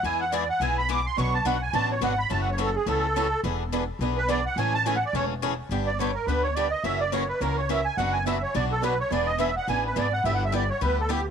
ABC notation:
X:1
M:4/4
L:1/8
Q:"Swing" 1/4=212
K:Emix
V:1 name="Accordion"
g f d f g b d' =c' | c' a f g a c f b | (3a f c A G A4 | z4 z B d f |
g a (3g f d c z3 | z d c _B =B c d ^d | e d c B ^A c e g | f g e c d A B c |
d ^d e f g B =d f | (3e f e d c B A =G z |]
V:2 name="Steel-string acoustic guitar"
z8 | [B,,F,B,DFB] z [B,,F,B,DFB] z [B,,F,B,DFB] z [B,,F,B,DFB] z | [F,CEA] z [F,CEA] z [F,CEA] z [F,CEA] z | [E,B,DGB] z [E,B,DGB] z [E,B,DGB] z [E,B,DGB] z |
[E,G,CEA] z [E,G,CEA] z [E,G,CEA] z [E,G,CEA] z | [D,=G,B,D=G] z [D,G,B,DG] z [D,G,B,DG] z [D,G,B,DG] z | [F,CE^A] z [F,CEA] z [F,CEA] z [F,CEA] z | [F,B,DFB] z [F,B,DFB] z [F,B,DFB] z [F,B,DFB] z |
[E,B,DGB] z [E,B,DGB] z [E,B,DGB] z [E,B,DGB] z | [=G,B,E=G] z [G,B,EG] z [G,B,EG] z [G,B,EG] z |]
V:3 name="Steel-string acoustic guitar"
[E,G,B,EG] z [E,G,B,EG] z [E,G,B,EG] z [E,G,B,EG] z | [B,,F,B,DF] z [B,,F,B,DF] z [B,,F,B,DF] z [B,,F,B,DF] z | [C,E,A,CF] z [C,E,A,CF] z [C,E,A,CF] z [C,E,A,CF] z | [E,B,DG] z [E,B,DG] z [E,B,DG] z [E,B,DG] z |
[C,E,A,CG] z [C,E,A,CG] z [C,E,A,CG] z [C,E,A,CG] z | [D,=G,B,D=G] z [D,G,B,DG] z [D,G,B,DG] z [D,G,B,DG] z | [C,E,^A,CF] z [C,E,A,CF] z [C,E,A,CF] z [C,E,A,CF] z | [B,,F,B,DF] z [B,,F,B,DF] z [B,,F,B,DF] z [B,,F,B,DF] z |
[E,B,DG] z [E,B,DG] z [E,B,DG] z [E,B,DG] z | [=G,B,E=G] z [G,B,EG] z [G,B,EG] z [G,B,EG] z |]
V:4 name="Upright bass" clef=bass
E,,4 B,,,4 | B,,,2 B,,,2 A,,,2 G,,,2 | F,,,4 C,,4 | E,,,4 B,,,4 |
A,,,4 E,,,4 | =G,,,4 D,,4 | F,,,4 C,,4 | F,,,4 B,,,4 |
E,,,4 A,,,2 G,,,2 | =G,,,4 D,,4 |]